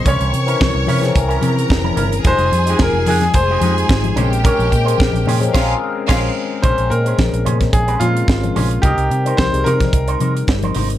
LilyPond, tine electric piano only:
\new Staff \with { instrumentName = "Tine electric piano" } { \time 4/4 \key bes \dorian \tempo 4 = 109 <e c' des' bes'>8 r16 <e c' des' bes'>8. r16 <e c' des' aes' bes'>4~ <e c' des' aes' bes'>16 r4 | <g ees' f' aes'>8 r16 <aes ees' f' aes'>4~ <aes ees' f' aes'>16 r8 <aes ees' f' g' aes'>4 <aes c' des' bes'>8~ | <aes c' des' bes'>8 r16 <aes c' des' bes'>8. r16 <aes c' des' aes' bes'>16 <aes c' des' aes' bes'>8 r8 <aes c' des' aes' bes'>8 r8 | <aes c' des' bes'>8 r16 <aes c' des' bes'>4~ <aes c' des' bes'>16 r8 <aes c' des' bes'>4 r8 |
<g c' ees' bes'>8 r16 <g c' ees' bes'>16 r16 <g c' ees' aes' bes'>4~ <g c' ees' aes' bes'>16 r4. | }